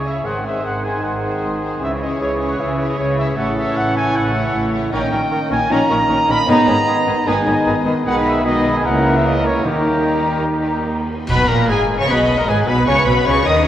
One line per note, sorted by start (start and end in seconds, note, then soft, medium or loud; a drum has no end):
0.00 0.20 C#2 medium
0.00 0.19 C#3 medium
0.00 0.23 C#3 soft
0.00 0.25 C#3 soft
0.00 0.22 G#3 soft
0.00 0.24 C#4 medium
0.00 0.23 G#4 medium
0.00 0.24 G#4 soft
0.00 0.23 C#5 soft
0.00 0.24 C#6 medium
0.04 0.24 E4 soft
0.04 0.23 G#4 soft
0.04 0.24 E5 medium
0.23 0.59 G#1 medium
0.23 0.59 G#2 medium
0.23 0.60 D#3 soft
0.23 0.63 D#3 medium
0.23 0.61 G#3 medium
0.23 0.62 C4 medium
0.23 0.42 D#4 medium
0.23 0.42 G#4 soft
0.23 0.62 G#4 soft
0.23 0.42 C5 soft
0.23 0.44 F#5 medium
0.23 0.62 C6 medium
0.43 0.81 D#4 soft
0.43 0.81 G#4 soft
0.43 0.82 C5 soft
0.43 0.63 E5 medium
0.61 0.98 G#1 medium
0.61 0.98 G#2 medium
0.61 1.00 D#3 medium
0.61 1.01 D#3 medium
0.61 1.01 G#3 soft
0.61 1.00 C4 soft
0.61 1.00 G#4 soft
0.61 1.02 G#4 medium
0.61 0.83 F#5 medium
0.61 1.01 C6 medium
0.83 1.21 D#4 soft
0.83 1.21 G#4 soft
0.83 1.22 C5 soft
0.83 1.03 G#5 medium
1.01 1.37 G#1 medium
1.01 1.37 G#2 medium
1.01 1.79 D#3 medium
1.01 1.83 D#3 medium
1.01 1.79 G#3 medium
1.01 1.79 C4 medium
1.01 1.79 G#4 medium
1.01 1.61 F#5 medium
1.01 1.79 C6 medium
1.22 1.60 D#4 soft
1.22 1.59 G#4 soft
1.22 1.60 C5 soft
1.41 1.76 G#1 medium
1.41 1.76 G#2 medium
1.61 1.81 D#4 soft
1.61 1.80 G#4 medium
1.61 1.81 C5 medium
1.80 2.15 C#2 medium
1.80 2.15 C#3 medium
1.80 2.16 C#3 medium
1.80 2.20 E3 medium
1.80 2.17 G#3 medium
1.80 2.19 C#4 medium
1.80 2.19 G#4 medium
1.80 2.18 G#4 medium
1.80 1.90 E5 medium
1.80 2.19 C#6 medium
2.00 2.39 C#4 medium
2.00 2.39 E4 medium
2.00 2.38 C#5 medium
2.00 2.09 D#5 medium
2.18 2.54 C#2 medium
2.18 2.57 C#3 medium
2.18 2.54 C#3 medium
2.18 2.58 E3 medium
2.18 2.57 G#3 medium
2.18 2.58 C#4 medium
2.18 2.57 G#4 medium
2.18 2.58 G#4 medium
2.18 2.33 C#5 medium
2.18 2.58 C#6 medium
2.39 2.78 C#4 medium
2.39 2.78 E4 medium
2.39 2.78 C#5 medium
2.49 2.59 F#5 medium
2.58 2.94 C#2 medium
2.58 2.97 C#3 medium
2.58 2.93 C#3 medium
2.58 2.97 E3 medium
2.58 2.96 G#3 medium
2.58 2.97 C#4 medium
2.58 2.97 G#4 medium
2.58 2.88 E5 medium
2.58 2.96 C#6 medium
2.79 3.17 C#4 medium
2.79 3.17 E4 medium
2.79 3.16 C#5 medium
2.89 2.98 D#5 medium
2.97 3.32 C#2 medium
2.97 3.32 C#3 medium
2.97 3.36 C#3 medium
2.97 3.36 E3 medium
2.97 3.36 G#3 medium
2.97 3.36 C#4 medium
2.97 3.38 G#4 medium
2.97 3.36 G#4 medium
2.97 3.17 C#5 medium
2.97 3.36 C#6 medium
3.17 3.36 C#4 medium
3.17 3.36 E4 medium
3.17 3.36 C#5 medium
3.17 3.26 E5 medium
3.36 3.71 A1 medium
3.36 3.71 A2 medium
3.36 4.89 C#3 medium
3.36 4.89 E3 medium
3.36 4.92 A3 medium
3.36 3.56 C#4 medium
3.36 4.89 C#4 medium
3.36 3.56 E4 medium
3.36 4.93 E4 medium
3.36 4.92 A4 medium
3.36 3.55 C#5 medium
3.36 3.56 F#5 medium
3.36 4.63 C#6 medium
3.56 3.94 C#4 medium
3.56 3.94 E4 medium
3.56 3.93 C#5 medium
3.56 3.75 E5 medium
3.75 4.10 A1 medium
3.75 4.09 A2 medium
3.75 3.95 F#5 loud
3.94 4.33 C#4 medium
3.94 4.32 E4 medium
3.94 4.32 C#5 medium
3.94 4.14 G#5 loud
4.14 4.49 A1 medium
4.14 4.48 A2 medium
4.14 4.73 F#5 medium
4.33 4.72 C#4 medium
4.33 4.71 E4 medium
4.33 4.71 C#5 medium
4.53 4.88 A1 medium
4.53 4.88 A2 medium
4.72 4.90 C#4 medium
4.72 4.92 E4 medium
4.72 4.92 C#5 medium
4.91 5.00 A#1 medium
4.91 5.00 A#2 medium
4.91 5.01 D#3 medium
4.91 5.68 D#3 medium
4.91 5.68 A#3 medium
4.91 5.53 C#4 medium
4.91 5.10 C#4 loud
4.91 5.53 D#4 medium
4.91 5.11 D#4 medium
4.91 5.01 A#4 medium
4.91 8.01 D#5 medium
4.91 5.47 G5 loud
4.91 4.99 C#6 medium
5.11 5.20 A#1 medium
5.11 5.19 A#2 medium
5.11 5.20 D#3 medium
5.11 5.19 C#4 medium
5.11 5.20 C#4 medium
5.11 5.20 A#4 medium
5.11 5.19 C#6 medium
5.31 5.40 D#3 medium
5.31 5.40 A#4 medium
5.31 5.38 C#6 medium
5.50 5.58 A#1 medium
5.50 5.58 A#2 medium
5.50 5.60 D#3 medium
5.50 5.58 C#4 medium
5.50 5.59 C#4 medium
5.50 5.60 A#4 medium
5.50 5.70 G#5 loud
5.50 5.56 C#6 medium
5.69 5.78 A#1 loud
5.69 5.77 A#2 loud
5.69 6.47 D#3 medium
5.69 5.79 D#3 medium
5.69 6.47 A#3 medium
5.69 5.88 C#4 loud
5.69 6.47 C#4 medium
5.69 5.88 D#4 medium
5.69 6.46 D#4 medium
5.69 5.79 A#4 medium
5.69 6.29 A#5 loud
5.69 5.76 C#6 medium
5.90 5.97 A#1 medium
5.90 5.97 A#2 medium
5.90 5.99 D#3 medium
5.90 5.98 C#4 medium
5.90 5.99 A#4 medium
5.90 5.96 C#6 medium
6.08 6.16 A#1 medium
6.08 6.17 A#2 medium
6.08 6.18 D#3 medium
6.08 6.17 C#4 medium
6.08 6.17 D#4 medium
6.08 6.19 A#4 medium
6.08 6.15 C#6 medium
6.28 6.37 A#1 medium
6.28 6.37 A#2 medium
6.28 6.38 D#3 medium
6.28 6.36 C#4 medium
6.28 6.39 A#4 medium
6.28 6.49 B5 loud
6.28 6.36 C#6 medium
6.47 6.56 G#1 medium
6.47 6.56 G#2 medium
6.47 7.03 G#2 medium
6.47 6.58 D#3 medium
6.47 7.10 D#3 medium
6.47 7.10 G#3 medium
6.47 7.26 B3 loud
6.47 6.67 B3 loud
6.47 7.25 D#4 medium
6.47 6.66 D#4 loud
6.47 6.58 G#4 medium
6.47 7.26 A#5 loud
6.47 6.55 B5 medium
6.67 6.76 G#1 medium
6.67 6.75 G#2 medium
6.67 6.77 D#3 medium
6.67 6.77 B3 medium
6.67 6.76 C#4 medium
6.67 6.77 G#4 medium
6.67 6.75 B5 medium
6.88 6.97 D#3 medium
6.88 6.97 G#4 medium
6.88 6.95 B5 medium
7.07 7.15 G#1 medium
7.07 7.15 G#2 medium
7.07 7.16 D#3 medium
7.07 7.15 B3 medium
7.07 7.16 B3 medium
7.07 7.16 G#4 medium
7.07 7.13 B5 medium
7.26 7.35 G#1 loud
7.26 7.35 G#2 loud
7.26 7.36 D#3 medium
7.26 8.04 D#3 medium
7.26 8.04 G#3 medium
7.26 7.44 B3 medium
7.26 8.04 B3 medium
7.26 7.44 D#4 loud
7.26 8.04 D#4 loud
7.26 7.36 G#4 medium
7.26 7.86 G#5 loud
7.26 7.33 B5 medium
7.45 7.55 G#1 medium
7.45 7.54 G#2 medium
7.45 7.56 D#3 medium
7.45 7.53 B3 medium
7.45 7.54 C#4 medium
7.45 7.55 G#4 medium
7.45 7.52 B5 medium
7.65 7.74 G#1 medium
7.65 7.74 G#2 medium
7.65 7.75 D#3 medium
7.65 7.73 B3 medium
7.65 7.74 D#4 medium
7.65 7.75 G#4 medium
7.65 7.72 B5 medium
7.84 7.94 G#1 medium
7.84 7.93 G#2 medium
7.84 7.96 D#3 medium
7.84 7.92 B3 medium
7.84 7.93 B3 medium
7.84 7.94 G#4 medium
7.84 7.92 B5 medium
8.05 8.81 B1 medium
8.05 8.80 B2 medium
8.05 8.44 D#3 medium
8.05 8.43 D#3 medium
8.05 8.42 G#3 medium
8.05 8.44 G#3 medium
8.05 8.43 B3 medium
8.05 8.42 D#4 medium
8.05 8.43 D#4 medium
8.05 8.42 G#4 medium
8.05 8.43 B4 medium
8.05 8.14 F#5 loud
8.05 8.42 B5 medium
8.25 8.45 E5 loud
8.44 8.86 D#3 medium
8.44 8.84 D#3 medium
8.44 8.83 G#3 medium
8.44 8.84 G#3 medium
8.44 8.83 B3 medium
8.44 8.83 D#4 medium
8.44 8.84 D#4 medium
8.44 8.85 G#4 medium
8.44 8.84 B4 medium
8.44 8.74 D#5 loud
8.44 8.83 B5 medium
8.75 8.85 G#5 medium
8.83 9.66 C#2 medium
8.83 9.65 C#3 medium
8.83 9.66 C#3 medium
8.83 9.65 E3 medium
8.83 9.65 A#3 medium
8.83 9.62 A#3 medium
8.83 9.64 A#3 medium
8.83 9.64 E4 medium
8.83 9.67 A#4 medium
8.83 9.64 A#4 medium
8.83 9.14 F#5 loud
8.83 9.66 A#5 medium
9.15 9.25 E5 medium
9.24 9.45 D#5 loud
9.45 9.66 C#5 medium
9.63 11.06 D#2 medium
9.63 11.09 D#3 medium
9.63 11.06 D#3 medium
9.63 10.23 D#3 medium
9.63 11.06 D#3 medium
9.63 11.09 G3 medium
9.63 11.05 A#3 medium
9.63 11.06 A#3 medium
9.63 11.05 D#4 medium
9.63 11.08 D#4 medium
9.63 11.09 G4 medium
9.63 11.09 A#4 medium
9.63 11.07 A#5 medium
11.28 11.47 B1 loud
11.28 11.47 B2 loud
11.28 11.48 B2 loud
11.28 11.48 B3 loud
11.28 11.37 B4 loud
11.28 11.47 B4 medium
11.28 11.50 B4 loud
11.28 11.48 B4 loud
11.28 11.48 B5 loud
11.28 concert bass drum medium
11.28 crash medium
11.48 11.68 A#1 medium
11.48 11.68 A#2 loud
11.48 11.69 A#2 loud
11.48 11.69 A#3 medium
11.48 11.68 A#4 medium
11.48 11.71 A#4 medium
11.48 11.69 A#4 medium
11.48 11.58 A#4 medium
11.48 11.69 A#5 loud
11.68 11.99 G#1 medium
11.68 11.99 G#2 medium
11.68 11.83 G#2 medium
11.68 11.99 G#3 medium
11.68 11.98 G#4 medium
11.68 11.82 G#4 medium
11.68 11.98 G#4 loud
11.68 11.99 G#4 medium
11.68 11.99 G#5 loud
11.97 12.08 C#3 loud
11.97 12.09 C#3 medium
11.97 12.08 C#4 medium
11.97 12.08 C#5 loud
11.97 12.09 C#5 medium
11.97 12.09 C#5 loud
11.97 12.09 C#6 loud
12.07 12.38 B1 medium
12.07 12.38 B2 medium
12.07 12.37 B3 medium
12.07 12.38 B4 medium
12.07 12.39 B4 medium
12.07 12.16 B4 medium
12.07 12.40 B4 medium
12.07 12.45 D#5 loud
12.07 12.39 B5 medium
12.37 12.48 A#2 medium
12.37 12.48 A#3 medium
12.37 12.48 A#4 medium
12.37 12.43 A#4 medium
12.37 12.49 A#4 medium
12.37 12.49 A#5 medium
12.46 12.67 G#1 medium
12.46 12.67 G#2 loud
12.46 12.68 G#2 loud
12.46 12.66 G#3 loud
12.46 12.69 G#4 medium
12.46 12.56 G#4 medium
12.46 12.57 G#4 loud
12.46 12.68 G#4 medium
12.46 13.66 B4 loud
12.46 12.56 G#5 loud
12.67 12.87 B1 loud
12.67 12.87 B2 medium
12.67 12.87 B2 loud
12.67 12.76 B3 loud
12.67 12.75 B4 medium
12.67 12.77 B4 medium
12.67 12.86 B4 medium
12.67 12.87 B4 medium
12.67 12.88 B5 loud
12.86 12.95 C#2 loud
12.86 12.94 C#3 medium
12.86 13.07 C#3 loud
12.86 12.96 C#4 loud
12.86 13.08 C#5 loud
12.86 13.06 C#5 loud
12.86 12.96 C#5 medium
12.86 12.94 C#5 loud
12.86 13.07 C#6 loud
13.06 13.14 B1 medium
13.06 13.14 B2 medium
13.06 13.26 B2 loud
13.06 13.26 B3 loud
13.06 13.28 B4 medium
13.06 13.16 B4 medium
13.06 13.27 B4 medium
13.06 13.26 B5 loud
13.25 13.46 C#2 medium
13.25 13.46 C#3 loud
13.25 13.34 C#4 loud
13.25 13.47 C#5 loud
13.25 13.46 C#5 medium
13.25 13.46 C#5 loud
13.25 13.47 C#5 loud
13.25 13.46 C#6 loud
13.44 13.66 D#2 loud
13.44 13.55 D#3 loud
13.44 13.66 D#3 loud
13.44 13.65 D#4 loud
13.44 13.65 D#5 medium
13.44 13.66 D#5 medium
13.44 13.66 D#5 loud
13.44 13.66 D#6 loud
13.64 13.68 C#3 loud
13.64 13.68 C#4 loud